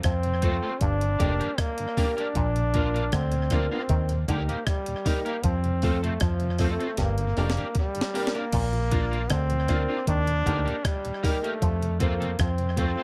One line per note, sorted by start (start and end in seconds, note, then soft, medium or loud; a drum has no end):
0.03 0.59 F2 medium
0.03 0.28 F3 medium
0.03 0.83 C4 loud
0.03 kick loud
0.03 cross-stick loud
0.03 closed hi-hat medium
0.23 0.33 F2 medium
0.23 0.33 C3 medium
0.23 closed hi-hat soft
0.42 0.51 F3 medium
0.42 0.55 A3 medium
0.42 0.52 A3 medium
0.42 0.56 C4 medium
0.42 0.65 C4 medium
0.42 0.52 C4 medium
0.42 0.56 F4 medium
0.42 0.65 F4 medium
0.42 0.56 A4 medium
0.42 0.65 A4 medium
0.42 0.65 C5 loud
0.42 kick medium
0.42 closed hi-hat medium
0.62 0.71 A3 medium
0.62 0.73 A3 soft
0.62 0.73 C4 medium
0.62 0.71 C4 medium
0.62 0.72 F4 medium
0.62 0.72 A4 medium
0.81 1.17 G1 loud
0.81 1.05 G2 medium
0.81 1.60 D4 loud
0.81 kick loud
0.81 closed hi-hat medium
1.01 1.10 G2 medium
1.01 1.09 D3 medium
1.01 closed hi-hat soft
1.19 1.39 F1 medium
1.19 1.32 F2 medium
1.19 1.28 G3 medium
1.19 1.32 A#3 medium
1.19 1.42 A#3 medium
1.19 1.28 A#3 medium
1.19 1.33 D4 medium
1.19 1.42 D4 medium
1.19 1.28 D4 medium
1.19 1.33 G4 medium
1.19 1.42 G4 medium
1.19 1.33 A#4 medium
1.19 1.42 A#4 loud
1.19 kick medium
1.19 closed hi-hat medium
1.39 1.48 G2 medium
1.39 1.48 D3 medium
1.39 1.50 A#3 medium
1.39 1.50 D4 soft
1.39 1.49 G4 medium
1.39 1.49 A#4 medium
1.39 closed hi-hat soft
1.58 2.17 A#3 loud
1.58 kick loud
1.58 cross-stick loud
1.58 closed hi-hat medium
1.78 1.86 G2 medium
1.78 1.87 D3 medium
1.78 closed hi-hat medium
1.97 2.06 G3 medium
1.97 2.19 A#3 medium
1.97 2.10 A#3 medium
1.97 2.06 A#3 medium
1.97 2.19 D4 medium
1.97 2.10 D4 medium
1.97 2.06 D4 medium
1.97 2.19 G4 medium
1.97 2.10 G4 medium
1.97 2.19 A#4 loud
1.97 2.10 A#4 loud
1.97 kick loud
1.97 open hi-hat medium
2.17 2.27 A#3 soft
2.17 3.14 D4 loud
2.17 2.27 D4 medium
2.17 2.27 G4 medium
2.17 2.26 A#4 medium
2.17 closed hi-hat soft
2.35 3.09 A#1 loud
2.35 2.59 A#2 medium
2.35 kick medium
2.35 closed hi-hat medium
2.56 2.63 A#2 medium
2.56 closed hi-hat soft
2.74 2.82 F3 medium
2.74 2.96 A#3 medium
2.74 2.87 A#3 medium
2.74 2.82 A#3 medium
2.74 2.96 D4 medium
2.74 2.87 D4 medium
2.74 2.82 D4 medium
2.74 2.96 F4 medium
2.74 2.88 F4 medium
2.74 2.96 A#4 loud
2.74 2.88 A#4 medium
2.74 kick medium
2.74 closed hi-hat medium
2.94 3.02 A#2 medium
2.94 3.04 A#3 soft
2.94 3.04 D4 medium
2.94 3.04 F4 medium
2.94 3.04 A#4 medium
2.94 closed hi-hat soft
3.12 3.68 D2 medium
3.12 3.36 D3 medium
3.12 3.71 C4 loud
3.12 kick loud
3.12 cross-stick loud
3.12 closed hi-hat medium
3.32 3.40 A#2 medium
3.32 closed hi-hat soft
3.50 3.59 F3 medium
3.50 3.73 A#3 medium
3.50 3.59 A#3 medium
3.50 3.64 A#3 medium
3.50 3.73 D4 medium
3.50 3.60 D4 medium
3.50 3.64 D4 medium
3.50 3.73 F4 medium
3.50 3.65 F4 medium
3.50 3.73 A#4 loud
3.50 3.65 A#4 loud
3.50 kick medium
3.50 cross-stick medium
3.50 closed hi-hat medium
3.71 3.79 A#3 medium
3.71 3.81 A#3 medium
3.71 4.18 C4 medium
3.71 3.79 D4 medium
3.71 3.81 D4 medium
3.71 3.81 F4 medium
3.71 3.81 A#4 medium
3.89 4.26 D#2 loud
3.89 4.13 D#3 medium
3.89 kick medium
3.89 closed hi-hat medium
4.09 4.17 D#2 soft
4.09 4.18 A#2 medium
4.09 closed hi-hat soft
4.28 4.47 D2 medium
4.28 4.41 D3 medium
4.28 4.37 G3 medium
4.28 4.50 A#3 medium
4.28 4.41 A#3 medium
4.28 4.37 A#3 medium
4.28 4.50 D#4 medium
4.28 4.42 D#4 medium
4.28 4.37 D#4 medium
4.28 4.50 G4 medium
4.28 4.42 G4 medium
4.28 4.51 A#4 medium
4.28 4.42 A#4 medium
4.28 kick medium
4.28 closed hi-hat medium
4.48 4.57 D#2 medium
4.48 4.57 A#2 medium
4.48 4.68 A#3 medium
4.48 4.59 A#3 soft
4.48 4.58 D#4 medium
4.48 4.58 G4 medium
4.48 4.58 A#4 medium
4.48 closed hi-hat soft
4.67 5.24 G3 medium
4.67 kick loud
4.67 cross-stick loud
4.67 closed hi-hat medium
4.86 4.95 D#2 medium
4.86 4.95 A#2 medium
4.86 closed hi-hat medium
5.05 5.14 G3 medium
5.05 5.18 A#3 medium
5.05 5.27 A#3 medium
5.05 5.14 A#3 medium
5.05 5.19 D#4 medium
5.05 5.27 D#4 medium
5.05 5.14 D#4 medium
5.05 5.19 G4 medium
5.05 5.28 G4 medium
5.05 5.19 A#4 medium
5.05 5.28 A#4 loud
5.05 kick medium
5.05 open hi-hat medium
5.25 5.46 A#3 medium
5.25 5.35 A#3 medium
5.25 5.35 D#4 medium
5.25 5.35 G4 medium
5.25 5.35 A#4 medium
5.25 closed hi-hat soft
5.44 6.17 F2 loud
5.44 5.67 F3 medium
5.44 6.03 C4 medium
5.44 kick medium
5.44 closed hi-hat medium
5.64 5.72 F2 medium
5.64 5.72 C3 medium
5.64 closed hi-hat soft
5.82 5.91 A3 medium
5.82 5.96 A3 medium
5.82 6.04 A3 medium
5.82 5.91 C4 medium
5.82 6.05 C4 medium
5.82 5.96 C4 medium
5.82 5.91 F4 medium
5.82 5.96 F4 medium
5.82 6.05 F4 medium
5.82 6.05 A4 loud
5.82 5.96 A4 medium
5.82 kick medium
5.82 open hi-hat medium
6.03 6.11 F2 medium
6.03 6.11 C3 medium
6.03 6.23 A3 medium
6.03 6.13 A3 soft
6.03 6.13 C4 medium
6.03 6.12 F4 soft
6.03 6.12 A4 medium
6.03 closed hi-hat soft
6.20 6.76 F2 medium
6.20 6.44 F3 medium
6.20 6.74 F3 medium
6.20 kick loud
6.20 cross-stick loud
6.20 closed hi-hat medium
6.40 6.49 F2 medium
6.40 6.49 C3 medium
6.40 closed hi-hat soft
6.58 6.81 A3 medium
6.58 6.73 A3 medium
6.58 6.68 A3 medium
6.58 6.68 C4 medium
6.58 6.82 C4 medium
6.58 6.73 C4 medium
6.58 6.82 F4 medium
6.58 6.68 F4 medium
6.58 6.73 F4 medium
6.58 6.82 A4 loud
6.58 6.73 A4 medium
6.58 kick medium
6.58 cross-stick medium
6.58 open hi-hat medium
6.72 7.01 A3 medium
6.80 6.90 A3 medium
6.80 6.88 C4 medium
6.80 6.90 C4 medium
6.80 6.89 F4 medium
6.80 6.88 F4 medium
6.80 6.89 A4 medium
6.80 closed hi-hat soft
6.97 7.34 G1 medium
6.97 7.21 G2 medium
6.97 7.76 A#3 medium
6.97 kick medium
6.97 snare soft
6.97 closed hi-hat medium
7.18 7.26 G2 medium
7.18 7.26 D3 soft
7.18 closed hi-hat soft
7.36 7.56 F1 medium
7.36 7.49 F2 medium
7.36 7.45 A#3 medium
7.36 7.50 A#3 medium
7.36 7.59 A#3 medium
7.36 7.45 D4 medium
7.36 7.50 D4 medium
7.36 7.59 D4 medium
7.36 7.45 G4 medium
7.36 7.50 G4 medium
7.36 7.59 G4 medium
7.36 7.50 A#4 medium
7.36 7.59 A#4 medium
7.36 open hi-hat soft
7.50 snare medium
7.57 7.65 G2 medium
7.57 7.65 D3 medium
7.57 7.67 A#3 medium
7.57 7.67 D4 medium
7.57 7.67 G4 medium
7.57 7.66 A#4 medium
7.57 closed hi-hat soft
7.75 8.37 G3 medium
7.75 kick loud
7.75 closed hi-hat medium
7.95 8.03 G2 medium
7.95 8.03 D3 medium
7.95 closed hi-hat medium
8.01 snare loud
8.14 8.36 A#3 medium
8.14 8.27 A#3 medium
8.14 8.22 A#3 medium
8.14 8.22 D4 medium
8.14 8.27 D4 medium
8.14 8.36 D4 medium
8.14 8.22 G4 medium
8.14 8.36 G4 medium
8.14 8.28 G4 medium
8.14 8.28 A#4 medium
8.14 8.36 A#4 loud
8.14 open hi-hat medium
8.27 snare medium
8.34 8.44 A#3 medium
8.34 9.33 A#3 loud
8.34 8.44 D4 medium
8.34 8.44 G4 medium
8.34 8.44 A#4 medium
8.34 closed hi-hat soft
8.52 9.26 A#1 loud
8.52 8.76 A#2 medium
8.52 kick medium
8.52 closed hi-hat medium
8.52 crash medium
8.72 8.80 A#2 medium
8.72 8.80 F3 medium
8.72 closed hi-hat soft
8.91 9.04 A#3 medium
8.91 8.99 A#3 medium
8.91 9.13 A#3 medium
8.91 9.04 D4 medium
8.91 8.99 D4 medium
8.91 9.13 D4 medium
8.91 9.00 F4 medium
8.91 9.05 F4 medium
8.91 9.14 F4 medium
8.91 9.05 A#4 medium
8.91 9.14 A#4 loud
8.91 kick medium
8.91 closed hi-hat medium
9.11 9.19 A#2 medium
9.11 9.19 F3 medium
9.11 9.21 A#3 soft
9.11 9.21 D4 medium
9.11 9.21 F4 medium
9.11 9.21 A#4 medium
9.11 closed hi-hat soft
9.30 9.85 D2 medium
9.30 9.53 D3 medium
9.30 10.08 C4 loud
9.30 kick loud
9.30 cross-stick loud
9.30 closed hi-hat medium
9.50 9.58 A#2 medium
9.50 9.58 F3 medium
9.50 closed hi-hat soft
9.68 9.81 A#3 medium
9.68 9.77 A#3 medium
9.68 9.90 A#3 medium
9.68 9.77 D4 medium
9.68 9.82 D4 medium
9.68 9.90 D4 medium
9.68 9.77 F4 medium
9.68 9.82 F4 medium
9.68 9.91 F4 medium
9.68 9.91 A#4 loud
9.68 9.82 A#4 medium
9.68 kick medium
9.68 cross-stick medium
9.68 closed hi-hat medium
9.88 9.98 A#3 soft
9.88 9.96 D4 medium
9.88 9.98 D4 soft
9.88 9.98 F4 medium
9.88 9.96 F4 medium
9.88 9.98 A#4 medium
10.07 10.43 D#2 loud
10.07 10.31 D#3 medium
10.07 10.86 D4 loud
10.07 kick medium
10.07 closed hi-hat medium
10.27 10.35 D#2 medium
10.27 10.35 A#2 medium
10.27 closed hi-hat soft
10.45 10.65 D2 medium
10.45 10.58 D3 medium
10.45 10.54 A#3 medium
10.45 10.58 A#3 medium
10.45 10.67 A#3 medium
10.45 10.54 D#4 medium
10.45 10.68 D#4 medium
10.45 10.59 D#4 medium
10.45 10.54 G4 medium
10.45 10.68 G4 medium
10.45 10.59 G4 medium
10.45 10.68 A#4 medium
10.45 10.59 A#4 medium
10.45 kick loud
10.45 closed hi-hat medium
10.65 10.74 D#2 medium
10.65 10.73 A#2 medium
10.65 10.75 A#3 medium
10.65 10.75 D#4 medium
10.65 10.75 G4 medium
10.65 10.75 A#4 medium
10.65 closed hi-hat soft
10.85 11.45 G3 loud
10.85 kick loud
10.85 cross-stick loud
10.85 closed hi-hat medium
11.05 11.12 D#2 medium
11.05 11.12 A#2 medium
11.05 closed hi-hat medium
11.23 11.31 A#3 medium
11.23 11.36 A#3 medium
11.23 11.45 A#3 medium
11.23 11.31 D#4 medium
11.23 11.36 D#4 medium
11.23 11.45 D#4 medium
11.23 11.31 G4 medium
11.23 11.36 G4 medium
11.23 11.45 G4 medium
11.23 11.36 A#4 medium
11.23 11.45 A#4 loud
11.23 kick loud
11.23 open hi-hat medium
11.43 12.00 A3 medium
11.43 11.53 A#3 medium
11.43 11.53 D#4 medium
11.43 11.53 G4 medium
11.43 11.52 A#4 medium
11.43 closed hi-hat soft
11.62 12.35 F2 loud
11.62 11.85 F3 medium
11.62 kick medium
11.62 closed hi-hat medium
11.81 11.89 F2 medium
11.81 11.89 C3 medium
11.81 closed hi-hat soft
12.00 12.08 A3 medium
12.00 12.13 A3 medium
12.00 12.42 A#3 medium
12.00 12.08 C4 medium
12.00 12.13 C4 medium
12.00 12.22 C4 medium
12.00 12.08 F4 medium
12.00 12.13 F4 medium
12.00 12.22 F4 medium
12.00 12.13 A4 medium
12.00 12.22 A4 medium
12.00 12.23 C5 loud
12.00 kick loud
12.00 closed hi-hat medium
12.20 12.27 F2 medium
12.20 12.28 C3 medium
12.20 12.30 A3 soft
12.20 12.30 C4 medium
12.20 12.30 F4 medium
12.20 12.29 A4 medium
12.20 closed hi-hat soft
12.39 12.94 F2 medium
12.39 12.63 F3 medium
12.39 12.78 C4 medium
12.39 kick loud
12.39 cross-stick loud
12.39 closed hi-hat medium
12.58 12.66 F2 medium
12.58 12.66 C3 medium
12.58 closed hi-hat soft
12.76 12.85 A3 medium
12.76 12.90 A3 medium
12.76 12.85 C4 medium
12.76 12.99 C4 medium
12.76 12.90 C4 medium
12.76 13.03 C4 medium
12.76 12.85 F4 medium
12.76 12.99 F4 medium
12.76 12.91 F4 medium
12.76 12.99 A4 medium
12.76 12.91 A4 medium
12.76 12.99 C5 loud
12.76 kick medium
12.76 closed hi-hat medium
12.96 13.03 A3 medium
12.96 13.03 C4 medium
12.96 13.03 F4 medium
12.96 13.03 A4 medium